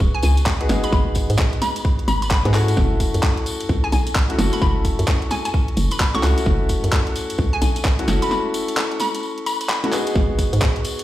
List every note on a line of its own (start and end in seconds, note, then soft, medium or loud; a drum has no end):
0.00 0.12 D#1 medium
0.00 0.57 B3 medium
0.00 0.57 D#4 medium
0.00 0.57 F#4 medium
0.00 0.57 G#4 medium
0.00 kick loud
0.00 tambourine soft
0.14 0.20 G#5 medium
0.23 0.67 C#2 loud
0.23 0.32 G#5 medium
0.23 open hi-hat loud
0.23 tambourine loud
0.37 closed hi-hat medium
0.37 tambourine medium
0.46 kick loud
0.46 clap loud
0.46 tambourine soft
0.61 0.68 B3 medium
0.61 0.68 D#4 medium
0.61 0.68 F#4 medium
0.61 0.68 G#4 medium
0.61 closed hi-hat soft
0.69 0.81 G#1 medium
0.69 2.42 B3 medium
0.69 2.42 D#4 medium
0.69 2.42 F#4 medium
0.69 2.42 G#4 medium
0.69 snare medium
0.69 open hi-hat medium
0.69 tambourine medium
0.83 0.89 B5 medium
0.83 closed hi-hat medium
0.83 tambourine medium
0.92 1.25 G#1 loud
0.92 1.02 B5 medium
0.92 kick loud
0.92 snare soft
0.92 tambourine soft
1.15 kick medium
1.15 open hi-hat loud
1.15 tambourine medium
1.30 1.37 G#2 medium
1.30 closed hi-hat medium
1.30 tambourine medium
1.38 kick loud
1.38 clap loud
1.38 tambourine soft
1.53 closed hi-hat soft
1.62 1.78 B5 medium
1.62 snare soft
1.62 open hi-hat medium
1.62 tambourine loud
1.76 closed hi-hat medium
1.76 tambourine medium
1.85 kick loud
1.85 tambourine soft
1.99 closed hi-hat soft
2.08 2.41 G#1 medium
2.08 2.19 B5 medium
2.08 open hi-hat loud
2.08 tambourine medium
2.22 2.28 B5 medium
2.22 closed hi-hat medium
2.22 tambourine medium
2.31 2.40 B5 medium
2.31 kick loud
2.31 clap loud
2.31 tambourine soft
2.45 2.74 G#2 loud
2.45 2.53 B3 medium
2.45 2.53 D#4 medium
2.45 2.53 F#4 medium
2.45 2.53 G#4 medium
2.45 snare soft
2.45 closed hi-hat soft
2.54 4.26 A3 medium
2.54 4.26 C#4 medium
2.54 4.26 E4 medium
2.54 4.27 F#4 medium
2.54 clap medium
2.54 open hi-hat medium
2.54 tambourine medium
2.68 closed hi-hat medium
2.68 tambourine medium
2.77 3.10 F#1 loud
2.77 kick loud
2.77 snare soft
2.77 tambourine soft
3.00 kick medium
3.00 open hi-hat loud
3.00 tambourine loud
3.14 3.22 F#2 medium
3.14 closed hi-hat medium
3.14 tambourine medium
3.23 kick loud
3.23 clap loud
3.23 tambourine soft
3.37 closed hi-hat soft
3.46 open hi-hat medium
3.46 tambourine loud
3.60 closed hi-hat medium
3.60 tambourine soft
3.69 3.81 C#2 medium
3.69 kick loud
3.69 tambourine soft
3.84 3.89 G#5 medium
3.92 4.36 B1 loud
3.92 4.02 G#5 medium
3.92 open hi-hat loud
3.92 tambourine medium
4.07 closed hi-hat medium
4.07 tambourine medium
4.15 kick loud
4.15 clap loud
4.30 4.37 A3 medium
4.30 4.37 C#4 medium
4.30 4.37 E4 medium
4.30 4.37 F#4 medium
4.30 closed hi-hat medium
4.39 4.50 F#1 medium
4.39 6.11 A3 medium
4.39 6.11 C#4 medium
4.39 6.11 E4 medium
4.39 6.11 F#4 loud
4.39 snare medium
4.39 open hi-hat medium
4.39 tambourine medium
4.52 4.59 B5 medium
4.52 closed hi-hat medium
4.52 tambourine soft
4.62 4.95 F#1 loud
4.62 4.71 B5 medium
4.62 kick loud
4.62 snare soft
4.85 kick medium
4.85 open hi-hat loud
4.85 tambourine medium
4.99 5.06 F#2 medium
4.99 closed hi-hat medium
4.99 tambourine soft
5.08 kick loud
5.08 clap loud
5.08 tambourine soft
5.22 closed hi-hat soft
5.31 5.40 G#5 medium
5.31 snare soft
5.31 open hi-hat medium
5.31 tambourine medium
5.45 5.51 G#5 medium
5.45 closed hi-hat medium
5.45 tambourine medium
5.54 kick loud
5.54 tambourine soft
5.68 closed hi-hat soft
5.77 5.89 F#1 medium
5.77 open hi-hat loud
5.77 tambourine medium
5.91 6.03 B5 medium
5.91 closed hi-hat medium
5.91 tambourine medium
6.00 kick loud
6.00 clap loud
6.00 tambourine soft
6.15 6.22 A3 medium
6.15 6.22 C#4 medium
6.15 6.22 E4 medium
6.15 6.22 F#4 medium
6.15 6.46 C#6 medium
6.15 snare soft
6.15 closed hi-hat medium
6.23 6.35 C#2 medium
6.23 7.96 A3 medium
6.23 7.96 C#4 medium
6.23 7.96 E4 medium
6.23 7.96 F#4 medium
6.23 clap medium
6.23 open hi-hat medium
6.23 tambourine medium
6.38 closed hi-hat medium
6.38 tambourine medium
6.46 6.79 F#1 loud
6.46 kick loud
6.46 snare soft
6.46 tambourine soft
6.69 kick medium
6.69 open hi-hat loud
6.69 tambourine medium
6.84 6.91 F#2 medium
6.84 closed hi-hat medium
6.84 tambourine soft
6.92 kick loud
6.92 clap loud
6.92 tambourine soft
7.07 closed hi-hat soft
7.16 open hi-hat loud
7.16 tambourine medium
7.30 closed hi-hat medium
7.30 tambourine soft
7.38 7.50 C#2 medium
7.38 kick loud
7.38 tambourine soft
7.53 7.59 G#5 medium
7.62 8.05 B1 loud
7.62 7.71 G#5 medium
7.62 open hi-hat loud
7.62 tambourine loud
7.76 closed hi-hat medium
7.76 tambourine medium
7.84 kick loud
7.84 clap loud
7.84 tambourine soft
7.99 8.06 A3 medium
7.99 8.06 C#4 medium
7.99 8.06 E4 medium
7.99 8.06 F#4 medium
7.99 closed hi-hat medium
8.08 8.19 F#1 medium
8.08 9.80 A3 medium
8.08 9.80 C#4 medium
8.08 9.80 E4 medium
8.08 9.80 F#4 medium
8.08 snare medium
8.08 open hi-hat medium
8.08 tambourine medium
8.22 8.28 B5 medium
8.22 closed hi-hat medium
8.22 tambourine medium
8.31 8.40 B5 medium
8.31 snare soft
8.31 tambourine soft
8.54 open hi-hat loud
8.54 tambourine medium
8.68 closed hi-hat medium
8.68 tambourine soft
8.77 clap loud
8.77 tambourine soft
8.92 closed hi-hat soft
9.00 9.17 B5 medium
9.00 snare soft
9.00 open hi-hat loud
9.00 tambourine medium
9.15 closed hi-hat medium
9.15 tambourine soft
9.23 tambourine soft
9.38 closed hi-hat soft
9.46 9.58 B5 loud
9.46 open hi-hat loud
9.46 tambourine medium
9.61 9.66 B5 medium
9.61 closed hi-hat medium
9.61 tambourine medium
9.69 9.79 B5 medium
9.69 clap loud
9.69 tambourine soft
9.84 9.91 A3 medium
9.84 9.91 C#4 medium
9.84 9.91 E4 medium
9.84 9.91 F#4 medium
9.84 snare soft
9.84 closed hi-hat medium
9.92 11.04 B3 medium
9.92 11.04 D#4 medium
9.92 11.04 F#4 medium
9.92 11.04 G#4 loud
9.92 clap medium
9.92 open hi-hat loud
9.92 tambourine medium
10.07 closed hi-hat medium
10.07 tambourine soft
10.15 10.48 G#1 loud
10.15 kick loud
10.15 snare soft
10.15 tambourine soft
10.39 kick medium
10.39 open hi-hat loud
10.39 tambourine medium
10.53 10.60 G#2 medium
10.53 closed hi-hat medium
10.53 tambourine medium
10.62 kick loud
10.62 clap loud
10.62 tambourine soft
10.76 closed hi-hat soft
10.84 open hi-hat loud
10.84 tambourine medium
10.99 closed hi-hat medium
10.99 tambourine soft